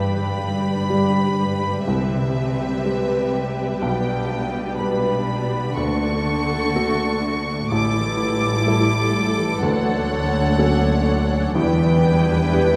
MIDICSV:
0, 0, Header, 1, 7, 480
1, 0, Start_track
1, 0, Key_signature, 2, "major"
1, 0, Tempo, 970874
1, 1891, Time_signature, 4, 2, 24, 8
1, 6310, End_track
2, 0, Start_track
2, 0, Title_t, "Violin section"
2, 0, Program_c, 0, 48
2, 0, Note_on_c, 0, 83, 68
2, 908, Note_off_c, 0, 83, 0
2, 928, Note_on_c, 0, 76, 60
2, 1886, Note_on_c, 0, 79, 60
2, 1891, Note_off_c, 0, 76, 0
2, 2368, Note_off_c, 0, 79, 0
2, 2368, Note_on_c, 0, 83, 51
2, 2841, Note_off_c, 0, 83, 0
2, 2853, Note_on_c, 0, 85, 65
2, 3813, Note_off_c, 0, 85, 0
2, 3815, Note_on_c, 0, 86, 75
2, 4744, Note_off_c, 0, 86, 0
2, 4765, Note_on_c, 0, 78, 71
2, 5716, Note_on_c, 0, 79, 76
2, 5717, Note_off_c, 0, 78, 0
2, 6310, Note_off_c, 0, 79, 0
2, 6310, End_track
3, 0, Start_track
3, 0, Title_t, "Violin section"
3, 0, Program_c, 1, 48
3, 0, Note_on_c, 1, 67, 37
3, 0, Note_on_c, 1, 71, 37
3, 907, Note_off_c, 1, 67, 0
3, 927, Note_on_c, 1, 67, 35
3, 2829, Note_off_c, 1, 71, 0
3, 2831, Note_off_c, 1, 67, 0
3, 2853, Note_on_c, 1, 69, 41
3, 2854, Note_on_c, 1, 66, 38
3, 3793, Note_off_c, 1, 66, 0
3, 3812, Note_off_c, 1, 69, 0
3, 3818, Note_on_c, 1, 69, 47
3, 4765, Note_on_c, 1, 73, 52
3, 5697, Note_off_c, 1, 73, 0
3, 5699, Note_off_c, 1, 69, 0
3, 5719, Note_on_c, 1, 71, 56
3, 5723, Note_on_c, 1, 64, 55
3, 6310, Note_off_c, 1, 64, 0
3, 6310, Note_off_c, 1, 71, 0
3, 6310, End_track
4, 0, Start_track
4, 0, Title_t, "Grand piano"
4, 0, Program_c, 2, 0
4, 0, Note_on_c, 2, 43, 39
4, 40, Control_c, 2, 64, 127
4, 431, Note_off_c, 2, 43, 0
4, 444, Note_on_c, 2, 55, 31
4, 444, Note_on_c, 2, 67, 28
4, 445, Note_on_c, 2, 74, 30
4, 908, Note_off_c, 2, 55, 0
4, 908, Note_off_c, 2, 67, 0
4, 909, Note_off_c, 2, 74, 0
4, 928, Note_on_c, 2, 36, 37
4, 936, Control_c, 2, 64, 0
4, 1009, Control_c, 2, 64, 127
4, 1395, Note_off_c, 2, 36, 0
4, 1410, Note_on_c, 2, 55, 25
4, 1410, Note_on_c, 2, 67, 29
4, 1413, Note_on_c, 2, 71, 29
4, 1871, Note_off_c, 2, 55, 0
4, 1871, Note_off_c, 2, 67, 0
4, 1873, Note_off_c, 2, 71, 0
4, 1888, Note_on_c, 2, 35, 41
4, 1901, Control_c, 2, 64, 0
4, 1970, Control_c, 2, 64, 127
4, 2355, Note_off_c, 2, 35, 0
4, 2368, Note_on_c, 2, 55, 29
4, 2370, Note_on_c, 2, 67, 29
4, 2371, Note_on_c, 2, 71, 31
4, 2830, Note_off_c, 2, 55, 0
4, 2831, Note_off_c, 2, 67, 0
4, 2832, Note_off_c, 2, 71, 0
4, 2853, Note_on_c, 2, 38, 41
4, 2861, Control_c, 2, 64, 0
4, 2933, Control_c, 2, 64, 127
4, 3321, Note_off_c, 2, 38, 0
4, 3338, Note_on_c, 2, 57, 34
4, 3341, Note_on_c, 2, 66, 31
4, 3343, Note_on_c, 2, 69, 35
4, 3794, Note_off_c, 2, 57, 0
4, 3795, Note_off_c, 2, 66, 0
4, 3796, Note_off_c, 2, 69, 0
4, 3815, Note_on_c, 2, 33, 50
4, 3821, Control_c, 2, 64, 0
4, 3889, Control_c, 2, 64, 127
4, 4275, Note_off_c, 2, 33, 0
4, 4285, Note_on_c, 2, 55, 36
4, 4289, Note_on_c, 2, 64, 33
4, 4290, Note_on_c, 2, 69, 38
4, 4741, Note_off_c, 2, 55, 0
4, 4742, Note_off_c, 2, 64, 0
4, 4743, Note_off_c, 2, 69, 0
4, 4759, Note_on_c, 2, 38, 45
4, 4769, Control_c, 2, 64, 0
4, 4848, Control_c, 2, 64, 127
4, 5218, Note_off_c, 2, 38, 0
4, 5232, Note_on_c, 2, 54, 33
4, 5233, Note_on_c, 2, 61, 38
4, 5235, Note_on_c, 2, 69, 37
4, 5695, Note_off_c, 2, 54, 0
4, 5695, Note_off_c, 2, 61, 0
4, 5696, Note_off_c, 2, 69, 0
4, 5712, Note_on_c, 2, 40, 53
4, 5723, Control_c, 2, 64, 0
4, 5790, Control_c, 2, 64, 127
4, 6182, Note_off_c, 2, 40, 0
4, 6193, Note_on_c, 2, 62, 36
4, 6194, Note_on_c, 2, 59, 40
4, 6199, Note_on_c, 2, 67, 46
4, 6310, Note_off_c, 2, 59, 0
4, 6310, Note_off_c, 2, 62, 0
4, 6310, Note_off_c, 2, 67, 0
4, 6310, End_track
5, 0, Start_track
5, 0, Title_t, "Harp"
5, 0, Program_c, 3, 46
5, 0, Note_on_c, 3, 43, 37
5, 0, Note_on_c, 3, 55, 30
5, 0, Note_on_c, 3, 67, 33
5, 0, Note_on_c, 3, 74, 33
5, 76, Note_on_c, 3, 50, 27
5, 192, Note_off_c, 3, 55, 0
5, 198, Note_on_c, 3, 55, 30
5, 316, Note_off_c, 3, 67, 0
5, 322, Note_on_c, 3, 67, 32
5, 436, Note_off_c, 3, 74, 0
5, 442, Note_on_c, 3, 74, 30
5, 556, Note_off_c, 3, 67, 0
5, 562, Note_on_c, 3, 67, 33
5, 674, Note_off_c, 3, 55, 0
5, 680, Note_on_c, 3, 55, 33
5, 796, Note_off_c, 3, 50, 0
5, 802, Note_on_c, 3, 50, 30
5, 925, Note_on_c, 3, 48, 42
5, 943, Note_off_c, 3, 43, 0
5, 945, Note_off_c, 3, 50, 0
5, 946, Note_off_c, 3, 74, 0
5, 1047, Note_on_c, 3, 60, 25
5, 1161, Note_off_c, 3, 55, 0
5, 1167, Note_on_c, 3, 55, 29
5, 1281, Note_off_c, 3, 67, 0
5, 1287, Note_on_c, 3, 67, 26
5, 1410, Note_on_c, 3, 71, 37
5, 1520, Note_off_c, 3, 67, 0
5, 1526, Note_on_c, 3, 67, 33
5, 1641, Note_off_c, 3, 55, 0
5, 1647, Note_on_c, 3, 55, 32
5, 1761, Note_off_c, 3, 60, 0
5, 1767, Note_on_c, 3, 60, 26
5, 1887, Note_on_c, 3, 47, 37
5, 1909, Note_off_c, 3, 48, 0
5, 1909, Note_off_c, 3, 60, 0
5, 2011, Note_on_c, 3, 59, 29
5, 2123, Note_off_c, 3, 55, 0
5, 2129, Note_on_c, 3, 55, 28
5, 2244, Note_off_c, 3, 67, 0
5, 2250, Note_on_c, 3, 67, 32
5, 2361, Note_off_c, 3, 71, 0
5, 2367, Note_on_c, 3, 71, 37
5, 2479, Note_off_c, 3, 67, 0
5, 2485, Note_on_c, 3, 67, 32
5, 2601, Note_off_c, 3, 55, 0
5, 2607, Note_on_c, 3, 55, 32
5, 2720, Note_off_c, 3, 59, 0
5, 2726, Note_on_c, 3, 59, 30
5, 2846, Note_on_c, 3, 50, 40
5, 2869, Note_off_c, 3, 47, 0
5, 2869, Note_off_c, 3, 59, 0
5, 2869, Note_off_c, 3, 67, 0
5, 2869, Note_off_c, 3, 71, 0
5, 2870, Note_off_c, 3, 55, 0
5, 2971, Note_on_c, 3, 62, 29
5, 3093, Note_on_c, 3, 57, 28
5, 3216, Note_on_c, 3, 66, 31
5, 3337, Note_on_c, 3, 69, 36
5, 3450, Note_off_c, 3, 66, 0
5, 3456, Note_on_c, 3, 66, 38
5, 3569, Note_off_c, 3, 57, 0
5, 3575, Note_on_c, 3, 57, 34
5, 3691, Note_off_c, 3, 62, 0
5, 3697, Note_on_c, 3, 62, 33
5, 3817, Note_on_c, 3, 45, 45
5, 3828, Note_off_c, 3, 50, 0
5, 3832, Note_off_c, 3, 66, 0
5, 3937, Note_on_c, 3, 52, 32
5, 4054, Note_on_c, 3, 55, 30
5, 4172, Note_on_c, 3, 64, 36
5, 4287, Note_off_c, 3, 69, 0
5, 4293, Note_on_c, 3, 69, 40
5, 4403, Note_off_c, 3, 64, 0
5, 4521, Note_off_c, 3, 55, 0
5, 4527, Note_on_c, 3, 55, 39
5, 4633, Note_off_c, 3, 52, 0
5, 4639, Note_on_c, 3, 52, 36
5, 4757, Note_on_c, 3, 50, 49
5, 4778, Note_off_c, 3, 52, 0
5, 4781, Note_off_c, 3, 55, 0
5, 4783, Note_off_c, 3, 45, 0
5, 4877, Note_on_c, 3, 54, 35
5, 4994, Note_on_c, 3, 61, 37
5, 5106, Note_off_c, 3, 69, 0
5, 5112, Note_on_c, 3, 69, 40
5, 5234, Note_on_c, 3, 66, 41
5, 5347, Note_off_c, 3, 69, 0
5, 5353, Note_on_c, 3, 69, 43
5, 5467, Note_off_c, 3, 61, 0
5, 5473, Note_on_c, 3, 61, 36
5, 5504, Note_off_c, 3, 57, 0
5, 5584, Note_off_c, 3, 54, 0
5, 5590, Note_on_c, 3, 54, 37
5, 5625, Note_off_c, 3, 62, 0
5, 5711, Note_on_c, 3, 52, 53
5, 5732, Note_off_c, 3, 50, 0
5, 5732, Note_off_c, 3, 54, 0
5, 5734, Note_off_c, 3, 61, 0
5, 5734, Note_off_c, 3, 69, 0
5, 5735, Note_off_c, 3, 66, 0
5, 5832, Note_on_c, 3, 59, 34
5, 5951, Note_on_c, 3, 62, 37
5, 6068, Note_on_c, 3, 67, 40
5, 6193, Note_on_c, 3, 71, 44
5, 6310, Note_off_c, 3, 52, 0
5, 6310, Note_off_c, 3, 59, 0
5, 6310, Note_off_c, 3, 62, 0
5, 6310, Note_off_c, 3, 67, 0
5, 6310, Note_off_c, 3, 71, 0
5, 6310, End_track
6, 0, Start_track
6, 0, Title_t, "Viola section"
6, 0, Program_c, 4, 48
6, 0, Note_on_c, 4, 55, 42
6, 0, Note_on_c, 4, 62, 41
6, 906, Note_off_c, 4, 62, 0
6, 928, Note_on_c, 4, 60, 39
6, 1871, Note_off_c, 4, 60, 0
6, 1893, Note_on_c, 4, 62, 45
6, 2830, Note_off_c, 4, 55, 0
6, 2854, Note_on_c, 4, 57, 41
6, 3793, Note_off_c, 4, 57, 0
6, 3793, Note_off_c, 4, 62, 0
6, 3817, Note_on_c, 4, 55, 44
6, 3817, Note_on_c, 4, 64, 52
6, 4745, Note_off_c, 4, 55, 0
6, 4745, Note_off_c, 4, 64, 0
6, 4765, Note_on_c, 4, 57, 52
6, 4766, Note_on_c, 4, 62, 52
6, 5697, Note_off_c, 4, 57, 0
6, 5712, Note_on_c, 4, 55, 54
6, 6310, Note_off_c, 4, 55, 0
6, 6310, Note_off_c, 4, 62, 0
6, 6310, End_track
7, 0, Start_track
7, 0, Title_t, "Cello section"
7, 0, Program_c, 5, 48
7, 0, Note_on_c, 5, 43, 40
7, 925, Note_on_c, 5, 48, 39
7, 927, Note_off_c, 5, 43, 0
7, 1870, Note_off_c, 5, 48, 0
7, 1886, Note_on_c, 5, 47, 40
7, 2830, Note_off_c, 5, 47, 0
7, 2849, Note_on_c, 5, 50, 40
7, 3810, Note_on_c, 5, 45, 50
7, 3811, Note_off_c, 5, 50, 0
7, 4742, Note_off_c, 5, 45, 0
7, 4759, Note_on_c, 5, 38, 46
7, 5714, Note_off_c, 5, 38, 0
7, 5714, Note_on_c, 5, 40, 60
7, 6310, Note_off_c, 5, 40, 0
7, 6310, End_track
0, 0, End_of_file